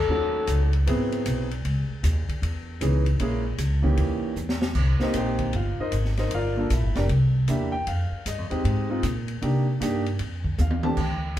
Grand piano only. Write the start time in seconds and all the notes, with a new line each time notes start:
0.09 F#3 A3 C#4 D#4 F#4
0.86 F#3 B3 C4 E4 G#4
2.81 E3 B3 C#4 D#4 G#4
3.20 G#3 A#3 C#4 E4 G#4
3.82 E3 A#3 C#4 D#4 G4
5.00 A#3 C4 D#4 G4 A#4 C5 D#5
5.17 G4 C5 D#5 G5
5.56 F4 F5
5.80 D#4 A#4 C5 D#5
6.19 D#4 A#4 C5 D#5
6.34 F4 A#4 D5 F5
6.56 A#3 D4 F4 A4
6.73 E4 E5
6.96 D4 G4 A#4 D5
7.48 A#3 D4 E4 G4 E5
7.72 G5
7.88 F5
8.28 D#5
8.50 G#3 C4 D#4 G4
8.89 G#3 C4 D#4 F4
9.42 A#3 D4 D#4 G4
9.80 A#3 D4 D#4 G4
10.61 F5
10.83 A3 C4 D4 G4 A5
11.00 G5